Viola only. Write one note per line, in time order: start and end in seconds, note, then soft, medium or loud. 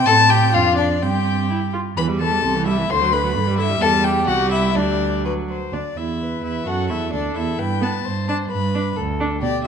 0.00 0.49 C4 medium
0.54 0.99 D4 medium
1.02 1.47 C4 medium
1.50 1.58 E4 medium
1.73 1.81 F4 soft
1.97 2.10 E3 medium
2.08 2.22 G3 medium
2.20 2.33 E3 medium
2.31 2.43 G3 medium
2.44 2.57 C3 medium
2.55 2.68 E3 medium
2.67 2.79 G3 medium
2.78 2.89 E3 medium
2.90 3.03 D3 medium
3.02 3.14 F#3 medium
3.13 3.25 D3 medium
3.24 3.35 F#3 medium
3.36 3.48 D3 medium
3.47 3.60 G3 medium
3.58 3.72 D3 medium
3.70 3.81 G3 medium
3.82 4.24 G3 medium
4.27 4.75 G3 medium
4.75 5.26 G3 medium
5.25 5.53 F#3 soft
5.73 5.81 D4 soft
5.96 6.42 E4 soft
6.43 6.66 E4 soft
6.66 6.91 F#4 medium
6.90 7.12 E4 soft
7.12 7.37 D4 medium
7.36 7.59 E4 medium
7.81 7.92 B3 soft
8.28 8.39 D4 soft
8.74 8.85 D4 medium
9.20 9.30 D4 medium